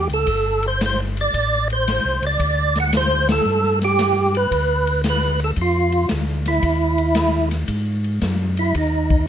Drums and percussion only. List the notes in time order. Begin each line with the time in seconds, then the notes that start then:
0.09 ride
0.27 kick, ride
0.63 ride
0.81 snare, hi-hat pedal, ride
1.17 ride
1.34 kick, ride
1.70 ride
1.88 snare, hi-hat pedal, ride
2.23 ride
2.40 kick, ride
2.75 snare, ride
2.93 snare, hi-hat pedal, ride
3.28 snare, ride
3.64 snare
3.82 snare, ride
3.99 snare, hi-hat pedal, ride
4.35 ride
4.52 kick, ride
4.87 ride
5.04 snare, hi-hat pedal, ride
5.39 ride
5.56 kick, ride
5.92 ride
6.09 snare, hi-hat pedal, ride
6.46 snare, ride
6.63 kick, ride
6.98 ride
7.15 snare, hi-hat pedal, ride
7.51 snare, ride
7.68 kick, ride
8.04 ride
8.21 kick, snare, hi-hat pedal, ride
8.57 ride
8.75 kick, ride
9.10 kick, ride